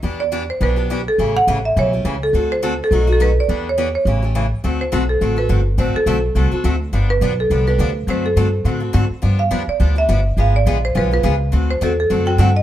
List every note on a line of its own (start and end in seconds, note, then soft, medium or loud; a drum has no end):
0.03 0.49 E2 medium
0.03 0.22 E3 medium
0.03 0.22 B3 medium
0.03 0.22 D4 medium
0.03 0.22 G4 medium
0.20 0.50 D5 medium
0.32 0.42 E3 medium
0.32 0.42 B3 medium
0.32 0.42 D4 medium
0.32 0.43 G4 medium
0.50 0.61 C5 medium
0.61 1.07 B1 medium
0.61 0.77 E3 medium
0.61 0.76 B3 medium
0.61 0.76 D4 medium
0.61 0.75 G4 medium
0.61 0.89 B4 medium
0.76 0.89 B3 soft
0.76 0.89 D4 soft
0.76 0.89 G4 soft
0.90 1.00 E3 medium
0.90 1.00 B3 medium
0.90 1.00 D4 medium
0.90 1.01 G4 medium
1.08 1.19 A4 medium
1.18 1.41 A1 medium
1.18 1.37 C#3 medium
1.18 1.37 E3 medium
1.18 1.37 A3 medium
1.18 1.38 C#4 medium
1.18 1.38 G4 medium
1.37 1.62 F#5 loud
1.47 1.72 A1 medium
1.47 1.58 C#3 medium
1.47 1.58 E3 medium
1.47 1.58 A3 medium
1.47 1.58 C#4 medium
1.47 1.58 G4 medium
1.65 1.71 E5 medium
1.76 2.01 B1 medium
1.76 1.92 C#3 medium
1.76 1.92 E3 soft
1.76 1.92 A3 medium
1.76 1.92 C#4 medium
1.76 1.92 G4 medium
1.76 2.04 C#5 medium
1.93 2.04 A3 soft
1.93 2.04 C#4 soft
1.93 2.04 G4 soft
2.05 2.29 C#2 medium
2.05 2.15 C#3 medium
2.05 2.15 E3 medium
2.05 2.15 A3 medium
2.05 2.15 C#4 medium
2.05 2.15 G4 medium
2.23 2.28 A4 medium
2.33 2.79 D2 medium
2.33 2.52 D3 medium
2.33 2.52 A3 medium
2.33 2.53 C4 medium
2.33 2.53 F#4 medium
2.33 2.53 A4 medium
2.52 2.78 C5 medium
2.62 2.72 D3 medium
2.62 2.73 A3 medium
2.62 2.73 C4 medium
2.62 2.73 F#4 medium
2.62 2.73 A4 medium
2.84 3.09 A4 medium
2.91 3.37 B1 medium
2.91 3.07 B2 medium
2.91 3.07 F#3 medium
2.91 3.07 A3 medium
2.91 3.07 D#4 medium
2.91 3.06 F#4 medium
3.07 3.19 A3 soft
3.07 3.20 D#4 soft
3.07 3.19 F#4 medium
3.13 3.21 A4 medium
3.20 3.30 B2 medium
3.20 3.30 F#3 medium
3.20 3.30 A3 medium
3.20 3.30 D#4 medium
3.20 3.30 F#4 medium
3.20 3.39 B4 medium
3.40 3.66 D5 medium
3.48 3.94 E2 medium
3.48 3.67 E3 medium
3.48 3.67 B3 medium
3.48 3.67 D4 medium
3.48 3.67 G4 medium
3.69 3.86 C#5 medium
3.78 3.88 E3 medium
3.78 3.88 B3 medium
3.78 3.88 D4 medium
3.78 3.88 G4 medium
3.95 4.48 C#5 medium
4.05 4.51 A1 medium
4.05 4.22 C#3 medium
4.05 4.22 E3 medium
4.05 4.22 A3 medium
4.05 4.22 C#4 medium
4.05 4.21 G4 medium
4.22 4.34 A3 soft
4.22 4.34 C#4 soft
4.22 4.34 G4 soft
4.35 4.45 C#3 medium
4.35 4.45 E3 medium
4.35 4.45 A3 medium
4.35 4.45 C#4 medium
4.35 4.45 G4 medium
4.64 4.92 D2 medium
4.64 4.82 D3 medium
4.64 4.82 A3 medium
4.64 4.82 C4 medium
4.64 4.82 F#4 medium
4.64 4.83 A4 medium
4.81 5.07 C5 medium
4.92 5.20 B1 medium
4.92 5.02 D3 medium
4.92 5.02 A3 medium
4.92 5.02 C4 medium
4.92 5.03 F#4 medium
4.92 5.03 A4 medium
5.09 5.36 A4 medium
5.21 5.49 A1 medium
5.21 5.37 D3 medium
5.21 5.37 A3 medium
5.21 5.37 C4 medium
5.21 5.36 F#4 medium
5.21 5.35 A4 medium
5.36 5.48 C4 soft
5.36 5.49 F#4 soft
5.36 5.49 A4 soft
5.36 5.76 B4 medium
5.49 5.77 G1 medium
5.49 5.59 D3 medium
5.49 5.60 A3 medium
5.49 5.60 C4 medium
5.49 5.60 F#4 medium
5.49 5.60 A4 medium
5.78 5.93 A1 medium
5.78 5.97 D3 medium
5.78 5.97 A3 medium
5.78 5.97 C4 medium
5.78 5.97 F#4 medium
5.78 5.97 A4 medium
5.78 5.95 C5 medium
5.95 6.22 A4 medium
5.95 muted upright bass stroke soft
6.06 6.34 B1 medium
6.06 6.17 D3 medium
6.06 6.17 A3 medium
6.06 6.17 C4 medium
6.06 6.17 F#4 medium
6.06 6.17 A4 medium
6.35 6.51 C2 medium
6.35 6.51 D3 medium
6.35 6.51 A3 medium
6.35 6.52 C4 medium
6.35 6.51 F#4 medium
6.35 6.50 A4 medium
6.51 6.63 C4 soft
6.51 6.64 F#4 soft
6.51 6.64 A4 soft
6.64 6.92 D2 medium
6.64 6.74 D3 medium
6.64 6.75 A3 medium
6.64 6.75 C4 medium
6.64 6.75 F#4 medium
6.64 6.75 A4 medium
6.93 7.20 G1 medium
6.93 7.12 D3 medium
6.93 7.12 F3 medium
6.93 7.12 B3 medium
6.93 7.12 D4 medium
6.93 7.12 G4 medium
7.10 7.37 B4 loud
7.21 7.49 B1 medium
7.21 7.32 D3 medium
7.21 7.32 F3 medium
7.21 7.32 B3 medium
7.21 7.32 D4 medium
7.21 7.32 G4 medium
7.40 7.66 A4 medium
7.50 7.78 C2 medium
7.50 7.66 D3 medium
7.50 7.66 F3 medium
7.50 7.66 B3 medium
7.50 7.67 D4 medium
7.50 7.66 G4 medium
7.67 7.79 B3 soft
7.67 7.79 D4 soft
7.67 7.79 G4 soft
7.67 8.06 B4 medium
7.78 8.06 D2 medium
7.78 7.89 D3 medium
7.78 7.90 F3 medium
7.78 7.90 B3 medium
7.78 7.90 D4 medium
7.78 7.90 G4 medium
8.07 8.35 F#2 medium
8.07 8.26 D3 medium
8.07 8.27 A3 medium
8.07 8.27 C4 medium
8.07 8.27 F#4 medium
8.07 8.27 A4 medium
8.07 8.25 C5 medium
8.26 8.52 A4 medium
8.36 8.64 G2 medium
8.36 8.47 D3 medium
8.36 8.47 A3 medium
8.36 8.47 C4 medium
8.36 8.47 F#4 medium
8.36 8.47 A4 medium
8.65 8.93 A2 medium
8.65 8.81 D3 medium
8.65 8.81 A3 medium
8.65 8.81 C4 medium
8.65 8.80 F#4 medium
8.65 8.79 A4 medium
8.80 8.92 C4 soft
8.80 8.93 F#4 soft
8.80 8.93 A4 soft
8.93 9.09 G#2 medium
8.93 9.04 D3 medium
8.93 9.04 A3 medium
8.93 9.04 C4 medium
8.93 9.04 F#4 medium
8.93 9.04 A4 medium
9.10 muted upright bass stroke soft
9.22 9.50 G2 medium
9.22 9.41 D3 medium
9.22 9.41 F3 medium
9.22 9.41 B3 medium
9.22 9.41 D4 medium
9.22 9.41 G4 medium
9.39 9.66 F5 medium
9.51 9.66 F2 medium
9.51 9.61 D3 medium
9.51 9.61 F3 medium
9.51 9.62 B3 medium
9.51 9.62 D4 medium
9.51 9.62 G4 medium
9.67 9.95 D5 medium
9.67 muted upright bass stroke soft
9.80 10.08 D2 medium
9.80 9.96 D3 medium
9.80 9.96 F3 medium
9.80 9.96 B3 medium
9.80 9.95 D4 medium
9.80 9.94 G4 medium
9.96 10.08 B3 soft
9.96 10.08 D4 soft
9.96 10.08 G4 medium
9.96 10.36 E5 medium
10.09 10.36 G1 medium
10.09 10.19 D3 medium
10.09 10.19 F3 medium
10.09 10.19 B3 medium
10.09 10.20 D4 medium
10.09 10.19 G4 medium
10.37 10.65 G#1 medium
10.37 10.56 D3 medium
10.37 10.56 G#3 medium
10.37 10.56 B3 medium
10.37 10.57 F4 medium
10.37 10.57 G#4 medium
10.37 10.55 F5 medium
10.56 10.82 D5 medium
10.66 10.94 A#1 medium
10.66 10.77 D3 medium
10.66 10.77 G#3 medium
10.66 10.77 B3 medium
10.66 10.77 F4 medium
10.66 10.77 G#4 medium
10.85 10.96 C5 medium
10.95 11.23 B1 medium
10.95 11.11 D3 medium
10.95 11.11 G#3 medium
10.95 11.11 B3 medium
10.95 11.11 F4 medium
10.95 11.10 G#4 medium
10.95 11.12 B4 medium
11.11 11.23 B3 soft
11.11 11.23 F4 soft
11.11 11.23 G#4 soft
11.11 11.39 B4 medium
11.23 11.52 C#2 medium
11.23 11.34 D3 medium
11.23 11.34 G#3 medium
11.23 11.34 B3 medium
11.23 11.34 F4 medium
11.23 11.34 G#4 medium
11.52 11.80 D2 medium
11.52 11.71 D3 medium
11.52 11.71 A3 medium
11.52 11.71 C4 medium
11.52 11.71 F#4 medium
11.52 11.71 A4 medium
11.71 11.82 C5 loud
11.81 12.09 E2 medium
11.81 11.91 D3 medium
11.81 11.92 A3 medium
11.81 11.92 C4 medium
11.81 11.92 F#4 medium
11.81 11.92 A4 medium
11.81 11.98 A4 medium
12.00 12.26 A4 medium
12.10 12.38 F#2 medium
12.10 12.26 D3 medium
12.10 12.26 A3 medium
12.10 12.26 C4 medium
12.10 12.26 F#4 medium
12.10 12.25 A4 medium
12.26 12.38 C4 soft
12.26 12.38 F#4 soft
12.26 12.38 A4 soft
12.26 12.39 G5 loud
12.38 12.63 G2 medium
12.38 12.49 D3 medium
12.38 12.49 A3 medium
12.38 12.49 C4 medium
12.38 12.49 F#4 medium
12.38 12.49 A4 medium
12.38 12.56 F#5 medium
12.56 12.63 D#5 medium